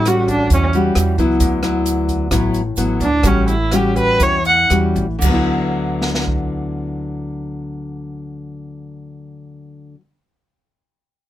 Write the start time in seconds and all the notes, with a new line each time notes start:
Already playing: A1 A2
0.05 G3 C#4 F#4, cross-stick, closed hi-hat, shaker
0.28 D4, kick, closed hi-hat, shaker
0.50 E2 E3 C#4, kick, closed hi-hat, shaker
0.73 G3 C#4 F#4, closed hi-hat, shaker
0.95 E2, cross-stick, closed hi-hat, shaker
1.18 C#2 F#3 B3 E4, kick, closed hi-hat, shaker
1.40 D2 D3, kick, closed hi-hat, shaker
1.63 F#3 B3 E4, cross-stick, closed hi-hat, shaker
1.86 closed hi-hat, shaker
2.08 kick, closed hi-hat, shaker
2.31 A1 A2 F#3 B3 E4, kick, cross-stick, closed hi-hat, shaker
2.54 closed hi-hat, shaker
2.76 A1 F#3 B3 E4, closed hi-hat, shaker
3.00 D2 D4, kick, closed hi-hat, shaker
3.23 A1 A2 G3 C#4 F#4, kick, cross-stick, closed hi-hat, shaker
3.28 C#4
3.48 E4, closed hi-hat, shaker
3.72 G3 C#4 F#4 G4, cross-stick, closed hi-hat, shaker
3.96 B4, kick, closed hi-hat, shaker
4.20 E2 E3 C#5, kick, closed hi-hat, shaker
4.44 F#5, closed hi-hat, shaker
4.70 E2 G3 C#4 F#4, cross-stick, closed hi-hat, shaker
4.96 A1, kick, closed hi-hat, shaker
5.19 D2 D3, kick, crash, shaker
5.24 F#3
5.29 B3
5.34 E4
6.02 snare
6.15 snare
6.28 kick